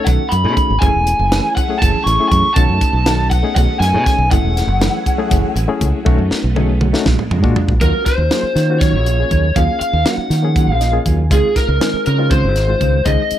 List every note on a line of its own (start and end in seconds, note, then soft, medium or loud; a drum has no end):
0.00 0.34 A3 medium
0.00 0.34 C#4 medium
0.00 0.34 D#4 medium
0.00 0.34 A4 medium
0.04 0.17 B1 loud
0.04 0.22 D#3 medium
0.04 0.22 A3 medium
0.04 0.22 C#4 medium
0.04 0.22 F#4 medium
0.04 0.31 F#5 medium
0.04 kick loud
0.04 closed hi-hat medium
0.29 0.46 F#2 medium
0.29 0.53 B5 medium
0.29 closed hi-hat medium
0.44 0.54 B2 medium
0.44 0.74 A3 medium
0.44 0.74 C#4 medium
0.44 0.75 D#4 medium
0.44 0.75 G#4 medium
0.54 0.72 D#3 medium
0.54 0.72 A3 medium
0.54 0.72 C#4 medium
0.54 0.72 F#4 medium
0.54 0.81 B5 medium
0.54 kick medium
0.54 closed hi-hat medium
0.70 0.80 G#1 medium
0.79 0.92 F#1 loud
0.79 0.97 E3 medium
0.79 1.22 A3 medium
0.79 0.97 A3 medium
0.79 1.21 C#4 medium
0.79 0.97 C#4 medium
0.79 1.22 E4 medium
0.79 1.22 G#4 medium
0.79 1.55 G#5 medium
0.79 kick loud
0.79 closed hi-hat medium
0.83 2.56 F#3 medium
0.83 2.55 C#4 medium
0.83 2.56 E4 medium
0.83 0.97 G#4 medium
0.83 2.56 G#4 medium
0.94 1.14 E1 medium
1.07 closed hi-hat medium
1.19 1.39 F#1 medium
1.31 1.47 E3 medium
1.31 1.62 A3 medium
1.31 1.47 A3 medium
1.31 1.62 C#4 medium
1.31 1.47 C#4 medium
1.31 1.62 E4 medium
1.31 1.48 G#4 medium
1.31 1.62 B4 medium
1.31 snare loud
1.31 closed hi-hat medium
1.55 1.73 A3 soft
1.55 1.72 C#4 soft
1.55 1.72 G#4 soft
1.55 1.79 F#5 loud
1.55 kick medium
1.55 closed hi-hat medium
1.69 2.09 A3 medium
1.69 2.10 C#4 medium
1.69 2.10 E4 medium
1.69 2.10 G#4 medium
1.79 1.92 F#1 medium
1.79 1.97 E3 medium
1.79 1.97 A3 medium
1.79 1.97 C#4 medium
1.79 1.97 G#4 medium
1.79 2.06 A5 medium
1.79 kick loud
1.79 closed hi-hat medium
2.04 2.16 A1 medium
2.04 2.22 C#4 soft
2.04 2.22 G#4 medium
2.04 2.27 C#6 loud
2.04 closed hi-hat medium
2.08 2.22 A3 soft
2.20 2.50 A3 medium
2.20 2.50 C#4 medium
2.20 2.50 E4 medium
2.20 2.50 G#4 medium
2.29 2.41 F#2 medium
2.29 2.47 E3 soft
2.29 2.47 A3 medium
2.29 2.47 C#4 medium
2.29 2.53 C#6 medium
2.29 kick medium
2.29 closed hi-hat medium
2.33 2.47 G#4 medium
2.54 2.67 B1 loud
2.54 2.72 D#3 medium
2.54 2.96 A3 medium
2.54 2.72 A3 medium
2.54 4.30 A3 medium
2.54 4.30 B3 medium
2.54 2.97 C#4 medium
2.54 2.72 C#4 medium
2.54 2.97 D#4 medium
2.54 2.72 F#4 medium
2.54 2.97 F#4 medium
2.54 3.30 A5 loud
2.54 kick loud
2.54 closed hi-hat medium
2.58 4.30 D#4 medium
2.69 2.79 F#2 medium
2.81 muted fingered electric bass stroke soft
2.81 kick medium
2.81 closed hi-hat medium
2.93 3.42 B1 medium
3.06 3.22 D#3 medium
3.06 3.37 A3 medium
3.06 3.22 A3 medium
3.06 3.36 C#4 medium
3.06 3.22 C#4 medium
3.06 3.37 D#4 medium
3.06 3.37 F#4 medium
3.06 3.22 F#4 medium
3.06 snare loud
3.06 closed hi-hat medium
3.30 3.54 F#5 medium
3.30 kick medium
3.30 closed hi-hat medium
3.43 3.84 A3 medium
3.43 3.84 C#4 medium
3.43 3.84 D#4 medium
3.43 3.84 G#4 medium
3.56 3.66 B1 loud
3.56 3.71 D#3 medium
3.56 3.72 A3 medium
3.56 3.72 C#4 medium
3.56 3.72 F#4 medium
3.56 3.79 F#5 medium
3.56 kick loud
3.56 closed hi-hat medium
3.80 3.95 F#2 loud
3.80 3.97 A3 soft
3.80 3.97 C#4 soft
3.80 3.97 F#4 medium
3.80 4.03 G#5 medium
3.80 snare soft
3.80 closed hi-hat medium
3.93 4.04 B2 medium
3.93 4.24 A3 medium
3.93 4.24 C#4 medium
3.93 4.25 D#4 medium
3.93 4.25 G#4 medium
4.04 4.22 D#3 soft
4.04 4.22 A3 soft
4.04 4.22 C#4 medium
4.04 4.22 F#4 medium
4.04 4.31 G#5 loud
4.04 kick medium
4.04 snare soft
4.04 closed hi-hat medium
4.18 4.28 B1 medium
4.31 4.41 F#1 loud
4.31 4.47 E3 medium
4.31 6.04 F#3 medium
4.31 4.72 A3 medium
4.31 4.47 A3 medium
4.31 6.04 C#4 medium
4.31 4.72 C#4 medium
4.31 4.47 C#4 medium
4.31 6.04 E4 medium
4.31 4.72 E4 medium
4.31 6.04 G#4 medium
4.31 4.72 G#4 medium
4.31 4.47 G#4 medium
4.31 7.27 F#5 medium
4.31 kick loud
4.31 closed hi-hat medium
4.43 4.63 E1 medium
4.57 snare soft
4.57 closed hi-hat medium
4.67 4.87 F#1 medium
4.81 4.96 E3 medium
4.81 5.11 A3 medium
4.81 4.96 A3 medium
4.81 5.12 C#4 medium
4.81 4.97 C#4 medium
4.81 5.12 E4 medium
4.81 4.97 G#4 medium
4.81 5.12 B4 medium
4.81 snare loud
4.81 closed hi-hat medium
5.06 5.22 A3 soft
5.06 5.21 C#4 medium
5.06 5.21 G#4 medium
5.06 kick medium
5.06 closed hi-hat medium
5.18 5.59 A3 loud
5.18 5.59 C#4 medium
5.18 5.59 E4 medium
5.18 5.59 G#4 loud
5.31 5.41 F#1 loud
5.31 5.46 E3 medium
5.31 5.46 A3 medium
5.31 5.46 C#4 medium
5.31 5.46 G#4 medium
5.31 kick loud
5.31 closed hi-hat medium
5.56 5.66 A1 medium
5.56 closed hi-hat medium
5.68 5.99 A3 loud
5.68 5.99 C#4 loud
5.68 5.99 E4 medium
5.68 5.99 G#4 loud
5.68 muted fingered electric bass stroke soft
5.81 5.91 C#2 medium
5.81 kick medium
5.81 closed hi-hat medium
6.05 6.16 B1 medium
6.05 6.21 D#3 medium
6.05 6.46 A3 loud
6.05 7.05 A3 medium
6.05 6.21 A3 medium
6.05 7.05 B3 medium
6.05 6.46 C#4 medium
6.05 6.21 C#4 medium
6.05 6.46 D#4 medium
6.05 7.05 D#4 medium
6.05 6.21 F#4 loud
6.05 6.47 F#4 loud
6.05 kick loud
6.18 6.28 F#2 medium
6.31 muted fingered electric bass stroke soft
6.31 snare medium
6.44 6.93 B1 medium
6.55 6.71 D#3 medium
6.55 6.86 A3 medium
6.55 6.71 A3 medium
6.55 6.86 C#4 medium
6.55 6.71 C#4 medium
6.55 6.87 D#4 medium
6.55 6.72 F#4 medium
6.55 6.87 G#4 medium
6.55 mid tom medium
6.81 6.96 A3 soft
6.81 6.96 C#4 soft
6.81 6.96 F#4 medium
6.81 mid tom medium
6.93 7.06 A3 loud
6.93 7.07 C#4 medium
6.93 7.07 D#4 medium
6.93 7.07 F#4 loud
6.93 snare medium
7.06 7.16 A#1 loud
7.06 7.21 F#3 medium
7.06 7.80 G#3 medium
7.06 7.21 G#3 medium
7.06 7.80 A#3 medium
7.06 7.21 D4 medium
7.06 7.81 D4 medium
7.06 7.21 F4 medium
7.06 kick loud
7.06 snare medium
7.19 mid tom medium
7.31 7.44 F2 medium
7.31 7.47 G#3 medium
7.31 7.46 D4 soft
7.31 7.46 F4 medium
7.31 floor tom medium
7.43 7.54 A#2 medium
7.43 7.73 G#3 medium
7.43 7.74 D4 medium
7.43 7.74 F4 medium
7.43 7.74 F#4 loud
7.43 kick medium
7.56 7.71 F#3 medium
7.56 7.71 G#3 medium
7.56 7.71 D4 medium
7.56 7.72 F4 medium
7.56 floor tom medium
7.68 7.78 A#1 medium
7.68 kick medium
7.80 7.91 D#2 medium
7.80 7.96 F#3 medium
7.80 7.96 A#3 medium
7.80 8.21 A#3 medium
7.80 7.96 C#4 medium
7.80 8.22 C#4 medium
7.80 7.96 F4 medium
7.80 8.22 F4 medium
7.80 8.22 F#4 medium
7.80 8.05 A#4 medium
7.80 kick loud
7.80 closed hi-hat medium
8.06 8.77 C5 medium
8.06 muted fingered electric bass stroke soft
8.06 kick medium
8.06 snare soft
8.06 closed hi-hat medium
8.18 8.28 D#2 medium
8.30 8.46 F#3 medium
8.30 8.46 A#3 medium
8.30 8.62 A#3 medium
8.30 8.46 C#4 medium
8.30 8.62 C#4 medium
8.30 8.46 F4 medium
8.30 8.62 F4 medium
8.30 8.62 G#4 medium
8.30 snare medium
8.30 closed hi-hat medium
8.43 muted fingered electric bass stroke soft
8.56 8.95 D#3 medium
8.56 8.72 A#3 soft
8.56 8.72 C#4 soft
8.56 8.71 F4 soft
8.56 snare soft
8.56 closed hi-hat medium
8.69 9.09 A#3 medium
8.69 9.09 C#4 medium
8.69 9.10 F4 medium
8.69 9.10 F#4 medium
8.80 8.96 F#3 medium
8.80 8.96 A#3 medium
8.80 8.96 C#4 medium
8.80 8.96 F4 medium
8.80 9.58 C#5 medium
8.80 kick loud
8.80 snare soft
8.80 closed hi-hat medium
8.93 9.23 A#1 medium
9.06 9.22 A#3 soft
9.06 9.21 C#4 soft
9.06 9.21 F4 soft
9.06 closed hi-hat medium
9.19 9.49 A#3 medium
9.19 9.49 C#4 medium
9.19 9.49 F4 medium
9.19 9.50 G#4 medium
9.31 9.51 D#2 medium
9.31 9.46 F#3 medium
9.31 9.46 A#3 medium
9.31 9.47 C#4 medium
9.31 9.47 F4 medium
9.31 kick medium
9.31 closed hi-hat soft
9.56 9.66 D#2 medium
9.56 9.71 F#3 medium
9.56 9.71 A#3 medium
9.56 9.97 A#3 medium
9.56 9.71 C#4 medium
9.56 9.97 C#4 medium
9.56 9.71 F4 medium
9.56 9.97 F4 medium
9.56 9.97 G#4 medium
9.56 9.78 F5 medium
9.56 kick medium
9.56 closed hi-hat medium
9.80 10.06 F5 medium
9.80 muted fingered electric bass stroke soft
9.80 closed hi-hat medium
9.93 10.03 D#2 medium
10.06 10.21 F#3 medium
10.06 10.36 A#3 medium
10.06 10.21 A#3 medium
10.06 10.36 C#4 medium
10.06 10.22 C#4 medium
10.06 10.37 D#4 medium
10.06 10.22 F4 medium
10.06 10.37 F#4 medium
10.06 10.70 F#5 medium
10.06 snare loud
10.06 closed hi-hat medium
10.18 muted fingered electric bass stroke soft
10.30 10.69 D#3 medium
10.30 10.47 A#3 soft
10.30 10.47 C#4 soft
10.30 10.46 F4 soft
10.30 snare soft
10.30 closed hi-hat medium
10.43 10.84 F3 medium
10.43 10.83 A#3 medium
10.43 10.84 C#4 medium
10.43 10.84 G#4 medium
10.56 10.71 F#3 medium
10.56 10.72 A#3 medium
10.56 10.72 C#4 medium
10.56 10.72 F4 medium
10.56 kick medium
10.56 closed hi-hat medium
10.68 10.97 A#1 medium
10.68 11.02 F5 medium
10.81 10.97 A#3 soft
10.81 10.96 C#4 soft
10.81 10.96 F4 medium
10.81 11.04 D#5 medium
10.81 snare soft
10.81 closed hi-hat medium
10.92 11.23 A#3 medium
10.92 11.24 C#4 medium
10.92 11.23 F4 medium
10.92 11.24 G#4 medium
11.06 11.31 D#2 medium
11.06 11.21 F#3 medium
11.06 11.22 A#3 medium
11.06 11.22 C#4 medium
11.06 11.22 F4 medium
11.06 11.29 G#5 medium
11.06 kick medium
11.06 closed hi-hat medium
11.30 11.41 C#2 medium
11.30 11.47 D#3 medium
11.30 11.71 G#3 medium
11.30 11.47 G#3 medium
11.30 11.71 C4 medium
11.30 11.47 C4 medium
11.30 11.71 D#4 medium
11.30 11.72 F4 medium
11.30 11.47 F4 medium
11.30 11.56 G#4 medium
11.30 kick loud
11.30 closed hi-hat medium
11.56 12.03 A#4 medium
11.56 muted fingered electric bass stroke soft
11.56 kick medium
11.56 snare soft
11.56 closed hi-hat medium
11.68 11.78 C#2 medium
11.80 11.96 D#3 medium
11.80 12.11 G#3 medium
11.80 11.96 G#3 medium
11.80 12.11 C4 medium
11.80 11.96 C4 medium
11.80 12.11 D#4 medium
11.80 11.97 F4 medium
11.80 12.11 G#4 medium
11.80 snare loud
11.80 closed hi-hat medium
11.94 muted fingered electric bass stroke soft
12.06 12.46 C#3 medium
12.06 12.22 G#3 soft
12.06 12.21 C4 soft
12.06 12.21 F4 soft
12.06 12.30 A#4 medium
12.06 closed hi-hat medium
12.19 12.59 G#3 medium
12.19 12.59 C4 medium
12.19 12.59 D#4 medium
12.19 12.60 F4 medium
12.31 12.46 D#3 medium
12.31 12.46 G#3 medium
12.31 12.46 C4 medium
12.31 12.47 F4 medium
12.31 13.08 C5 medium
12.31 kick loud
12.31 closed hi-hat medium
12.44 12.73 G#1 medium
12.56 snare soft
12.56 closed hi-hat medium
12.68 12.99 G#3 medium
12.68 12.99 C4 medium
12.68 12.99 D#4 medium
12.68 12.99 F4 medium
12.81 13.01 C#2 medium
12.81 12.96 D#3 medium
12.81 12.96 G#3 medium
12.81 12.96 C4 medium
12.81 12.97 F4 medium
12.81 kick medium
12.81 closed hi-hat medium
13.05 13.16 C#2 medium
13.05 13.21 D#3 medium
13.05 13.39 G#3 medium
13.05 13.21 G#3 medium
13.05 13.39 C4 medium
13.05 13.22 C4 medium
13.05 13.39 D#4 medium
13.05 13.22 F4 medium
13.05 13.39 G#4 medium
13.05 13.39 D#5 medium
13.05 kick medium
13.05 closed hi-hat medium
13.31 muted fingered electric bass stroke soft
13.31 closed hi-hat medium